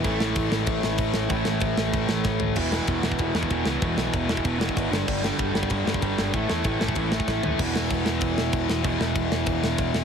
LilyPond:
<<
  \new Staff \with { instrumentName = "Distorted electric guitar" } { \clef bass \time 4/4 \key a \lydian \tempo 4 = 191 <a, e a>1 | <a, e a>1 | <e, b, e>8 <e, b, e>8 <e, b, e>8 <e, b, e>8 <e, b, e>8 <e, b, e>8 <e, b, e>8 <e, b, e>8 | <e, b, e>8 <e, b, e>8 <e, b, e>8 <e, b, e>8 <e, b, e>8 <e, b, e>8 <e, b, e>8 <g, d g>8 |
<g, d g>8 <g, d g>8 <g, d g>8 <g, d g>8 <g, d g>8 <g, d g>8 <g, d g>8 <g, d g>8 | <a, e a>8 <a, e a>8 <a, e a>8 <a, e a>8 <a, e a>8 <a, e a>8 <a, e a>8 <a, e a>8 | <e, b, e>1 | <e, b, e>1 | }
  \new Staff \with { instrumentName = "Overdriven electric guitar" } { \clef bass \time 4/4 \key a \lydian <a, e a>1 | <a, e a>1 | <e, b, e>8 <e, b, e>8 <e, b, e>8 <e, b, e>8 <e, b, e>8 <e, b, e>8 <e, b, e>8 <e, b, e>8 | <e, b, e>8 <e, b, e>8 <e, b, e>8 <e, b, e>8 <e, b, e>8 <e, b, e>8 <e, b, e>8 <g, d g>8 |
<g, d g>8 <g, d g>8 <g, d g>8 <g, d g>8 <g, d g>8 <g, d g>8 <g, d g>8 <g, d g>8 | <a, e a>8 <a, e a>8 <a, e a>8 <a, e a>8 <a, e a>8 <a, e a>8 <a, e a>8 <a, e a>8 | <e, b, e>1 | <e, b, e>1 | }
  \new Staff \with { instrumentName = "Picked electric bass" } { \clef bass \time 4/4 \key a \lydian a,,8 a,,8 a,,8 a,,8 a,,8 a,,8 a,,8 a,,8 | a,,8 a,,8 a,,8 a,,8 a,,8 a,,8 a,,8 a,,8 | e,,4 e,,8 e,,8 e,,8 e,8 e,,8 cis,8 | e,,8 b,,8 e,,8 e,,8 e,,4 gis,,8 g,,8 |
g,,4 g,,8 g,,8 g,,8 g,8 g,,8 g,,8 | a,,8 e,8 a,,8 a,,8 a,,4 a,,8 dis,8 | e,,8 e,,8 e,,8 e,,8 e,,8 e,,8 e,,8 e,,8 | e,,8 e,,8 e,,8 e,,8 e,,8 e,,8 e,,8 e,,8 | }
  \new DrumStaff \with { instrumentName = "Drums" } \drummode { \time 4/4 <cymc bd>8 sn8 <cymc bd>8 sn8 <cymc bd>8 sn8 <cymc bd>8 sn8 | <cymc bd>8 sn8 <cymc bd>8 sn8 <cymc bd>8 sn8 <bd sn>8 tomfh8 | <cymc bd>8 sn8 <bd cymr>8 sn16 bd16 <bd cymr>8 sn16 bd16 <bd cymr>8 sn8 | <bd cymr>8 sn8 <bd cymr>8 sn16 bd16 <bd cymr>8 sn16 bd16 <bd cymr>8 sn8 |
<cymc bd>8 sn8 <bd cymr>8 sn16 bd16 <bd cymr>8 sn16 bd16 <bd cymr>8 sn8 | <bd cymr>8 sn8 <bd cymr>8 sn16 bd16 <bd cymr>8 sn16 bd16 <bd sn>8 tomfh8 | <cymc bd>8 sn8 <cymc bd>8 sn8 <cymc bd>8 sn8 <cymc bd>8 sn8 | <cymc bd>8 sn8 <cymc bd>8 sn8 <cymc bd>8 sn8 <cymc bd>8 sn8 | }
>>